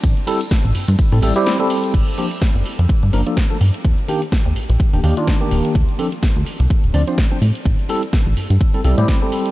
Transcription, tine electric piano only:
X:1
M:4/4
L:1/16
Q:"Swing 16ths" 1/4=126
K:Gm
V:1 name="Tine electric piano"
z2 [G,C=EA] z6 [G,CEA] [G,CEA] [G,CEG]2 [G,CEA]3 | z2 [F,B,DG] z6 z [F,B,DB] [F,B,DA] z [F,B,DA] z2 | z2 [E,B,DG] z6 [E,B,DG] [E,B,DG] [E,B,DF]2 [E,B,DG]3 | z2 [F,CDA] z6 z [F,CDd] [F,CDc] z [F,CDc] z2 |
z2 [G,C=EA] z6 [G,CEA] [G,CEA] [G,CEG]2 [G,CEA]3 |]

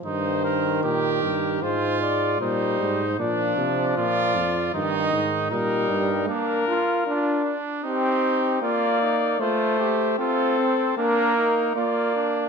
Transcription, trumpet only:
X:1
M:4/4
L:1/8
Q:1/4=77
K:Eb
V:1 name="Trumpet"
E B G2 F2 E2 | D2 F2 E2 E2 | D z F D E2 F E | F G F C D E F D |]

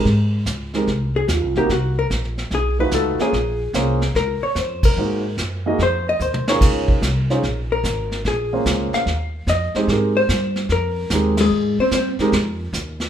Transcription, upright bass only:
X:1
M:4/4
L:1/8
Q:"Swing" 1/4=147
K:Ab
V:1 name="Upright bass" clef=bass
A,,2 D,,2 C,,2 (3E,, C,, A,,, | C,,2 B,,,2 =B,,,2 D,, z | B,,,2 C,,2 D,, z F,,2 | A,,2 _G,,2 F,,2 E,,2 |
D,,2 C,,2 B,,,2 A,,,2 | B,,,2 D,, z E,,2 F,, z | A,,2 G,,2 F,,2 E,,2 | A,, z G,, z F,,2 E,,2 |]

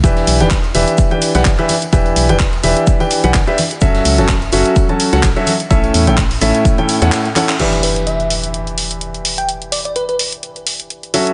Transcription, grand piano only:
X:1
M:4/4
L:1/16
Q:"Swing 16ths" 1/4=127
K:Edor
V:1 name="Grand piano"
[E,DGBe]3 [E,DGBg] z2 [E,DGBe]3 [E,DGBg]2 [E,DGBf] z [E,DGBe] z2 | [E,DGBe]3 [E,DGBg] z2 [E,DGBe]3 [E,DGBg]2 [E,DGBf] z [DGBe] z2 | [F,CFAe]3 [F,CFAa] z2 [F,CFAe]3 [F,CFAa]2 [F,CFAf] z [F,CFAe] z2 | [A,,CEAe]3 [A,,CEAg] z2 [A,,CEAe]3 [A,,CEAg]2 [A,,CEAf]2 z [CEAf] z |
[E,DGBe]16- | [E,DGBe]12- [E,DGBe]2 [F,CFAe]2 |]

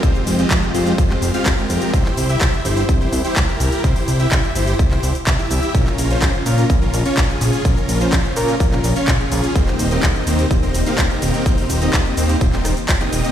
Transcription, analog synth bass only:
X:1
M:4/4
L:1/8
Q:1/4=126
K:Bbdor
V:1 name="Analog synth bass" clef=bass
F,,, F,,, F,,, F,, F,,, F,,, F,,, F,,, | C,, C,, C,, G,,, C,, C,, C,, C,, | C,, C,, C,, G,,, C,, C,, C,, C,, | B,,, B,,, B,,, B,, B,,, B,,, B,,, B,,, |
B,,, B,,, B,,, B,, B,,, B,,, B,,, B,,, | E,,, E,,, E,,, E,, E,,, E,,, E,,, E,,, | E,,, E,,, E,,, E,, E,,, E,,, E,,, E,,, |]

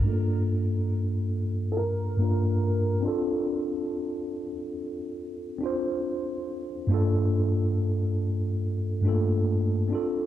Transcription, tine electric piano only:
X:1
M:4/4
L:1/8
Q:"Swing 16ths" 1/4=70
K:Gm
V:1 name="Tine electric piano"
[G,,A,B,DFA]3 z2 [G,,B,DFB]2 [CDFA]- | [CDFA]2 z3 [CDFc]2 z | [G,,B,DFA]3 z2 [G,,A,B,DFA]2 [CDFA] |]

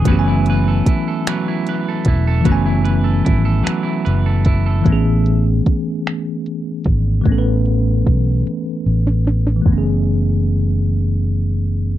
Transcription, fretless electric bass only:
X:1
M:6/8
L:1/8
Q:3/8=50
K:F#m
V:1 name="Fretless electric bass" clef=bass
F,,,2 z3 E,,, | F,,,2 G,,, z F,,,2 | A,,,2 z3 G,,, | A,,,2 B,,, z A,,,2 |
F,,,6 |]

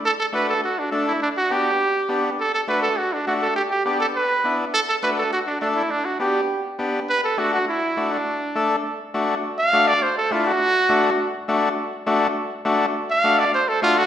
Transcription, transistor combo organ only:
X:1
M:4/4
L:1/8
Q:1/4=204
K:D
V:1 name="Transistor combo organ"
z2 [A,DF] z3 [A,DA] z | z2 [B,DG] z3 [B,DG] z | z2 [A,DF] z3 [A,DF] z | z2 [B,DG] z3 [B,DE] z |
z2 [A,DF] z3 [A,DA] z | z2 [B,DG] z3 [B,DG] z | z2 [A,DF] z3 [A,DF] z | z2 [A,DA] z3 [A,DF] z |
z2 [A,DF] z3 [A,DE] z | z2 [A,DF] z3 [A,DF] z | z2 [A,DF] z3 [A,DF] z | z2 [A,DF] z3 [A,DF] z |]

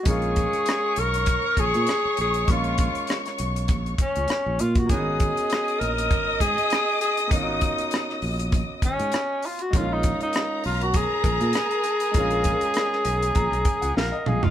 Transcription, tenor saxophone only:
X:1
M:4/4
L:1/16
Q:"Swing 16ths" 1/4=99
K:A#phr
V:1 name="Tenor saxophone"
G6 A4 G4 G2 | E6 z4 C4 E F | G6 A4 G4 G2 | D6 z4 C4 E F |
E D2 D3 E F G8- | G12 A2 G E |]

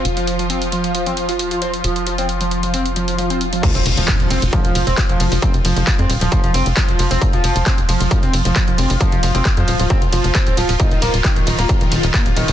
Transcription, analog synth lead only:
X:1
M:4/4
L:1/16
Q:1/4=134
K:Ebdor
V:1 name="Analog synth lead" clef=bass
z F, F, F, C z F, F, F, C z F, F, F, C z | F, F, F, C z F, F, F, C z F, F, F, C z F, | F, C z F, F, F, C z F, F, F, C z F, F, F, | C z F, F, F, C z F, F, F, C z F, F, F, C |
z F, F, F, C z F, F, F, C z F, F, F, C z | F, F, F, C z F, F, F, C z F, F, C C F, F, | E, E, B, z E, E, E, B, z E, E, E, B, z E, E, |]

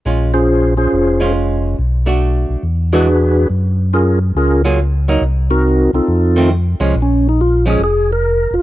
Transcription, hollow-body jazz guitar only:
X:1
M:4/4
L:1/8
Q:"Swing" 1/4=139
K:Bbm
V:1 name="Hollow-body jazz guitar"
[A,DF] z4 [A,DF]3 | z [=A,=D^F]3 z [=E,^G,DF] z2 | z4 z [G,B,FA] z [G,B,E] | z4 z [E,=A,C] z [F,_A,D] |
z3 [F,A,D] z4 |]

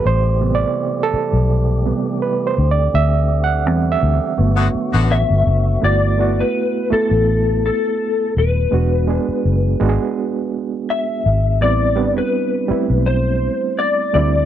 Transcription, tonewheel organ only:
X:1
M:4/4
L:1/8
Q:"Swing 16ths" 1/4=83
K:G
V:1 name="Tonewheel organ"
[A,G]8- | [A,G]4 [F,F]4 | z8 | z8 |
z8 |]
V:2 name="Tonewheel organ" clef=bass
[E,G,]6- [E,G,] [D,C]- | [D,C]4 [D,B,]4 | z8 | z8 |
z8 |]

